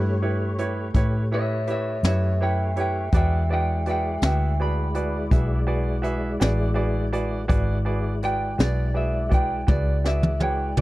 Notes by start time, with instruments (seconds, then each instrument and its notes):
Already playing: fingered electric bass G2, tonewheel organ A3 G4 C#5, upright piano E4 G4 B4 C#5
0.22 upright piano E4 G4 B4 C#5
0.58 upright piano E4 G4 B4 C#5, closed hi-hat
0.94 fingered electric bass A2, upright piano E4 G4 B4 C#5, kick, closed hi-hat
1.31 upright piano E4 G4 B4 C#5, clean electric guitar C#5 E5
1.67 upright piano E4 G4 B4 E5, clean electric guitar C#5, closed hi-hat
1.71 clean electric guitar E5
2.03 fingered electric bass F#2, upright piano E4 G4 B4 C#5, clean electric guitar C#5 E5, snare, closed hi-hat
2.41 upright piano E4 G4 B4 C#5, clean electric guitar E5 G5
2.76 upright piano E4 G4 B4 C#5, clean electric guitar E5, closed hi-hat
2.81 clean electric guitar G5
3.12 fingered electric bass E2, tonewheel organ G#3 E4 D5, upright piano F#4 G#4 B4 D5, kick, closed hi-hat
3.16 clean electric guitar E5 G5
3.49 upright piano F#4 G#4 B4 D5, clean electric guitar E5
3.54 clean electric guitar G5
3.86 upright piano F#4 G#4 B4 D5, clean electric guitar E5, closed hi-hat
3.90 clean electric guitar G5
4.22 fingered electric bass D2, upright piano F#4 G#4 B4 E5, clean electric guitar E5 G5, snare, closed hi-hat
4.60 upright piano F#4 G#4 B4 D5, clean electric guitar B5
4.95 upright piano F#4 G#4 B4 D5, closed hi-hat
5.31 fingered electric bass B1, upright piano F#4 G#4 B4 E5, kick, closed hi-hat
5.67 upright piano F#4 G#4 B4 D5
6.02 upright piano F#4 G#4 B4 E5, closed hi-hat
6.40 fingered electric bass A1, upright piano F#4 G#4 B4 D5, snare, closed hi-hat
6.74 upright piano F#4 G#4 B4 D5
7.13 upright piano F#4 G#4 B4 D5, closed hi-hat
7.48 fingered electric bass G#1, tonewheel organ G#3 E4 D5, upright piano F#4 G#4 B4 D5, kick, closed hi-hat
7.85 upright piano F#4 G#4 B4 D5
8.23 upright piano F#4 G#4 B4 D5, clean electric guitar G5, closed hi-hat
8.58 fingered electric bass B1, upright piano F#4 G#4 B4 D5, clean electric guitar D5, snare, closed hi-hat
8.94 upright piano F#4 G#4 B4 D5, clean electric guitar E5
9.29 upright piano F#4 G#4 B4 D5, kick, closed hi-hat
9.34 clean electric guitar G5
9.67 fingered electric bass C#2, upright piano F#4 G#4 B4 D5, clean electric guitar D5, kick, high tom
10.04 upright piano F#4 G#4 B4 D5, clean electric guitar E5, snare
10.23 mid tom
10.40 upright piano F#4 G#4 B4 C#5, clean electric guitar G5, mid tom
10.77 fingered electric bass D2, upright piano F#4 G#4 B4 D5, mid tom